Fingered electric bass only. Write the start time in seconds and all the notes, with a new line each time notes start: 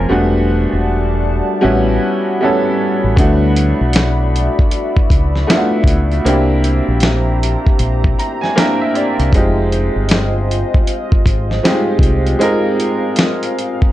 0.10 E1
0.73 E1
1.64 A1
3.04 A1
3.18 D2
3.81 B1
4.97 muted fingered electric bass stroke
5.11 C#2
5.85 C#2
6.25 C2
6.88 A#1
7.79 A#1
9.19 C2
9.33 F1
9.96 G1
11.12 muted fingered electric bass stroke
11.26 G#1
12.00 C2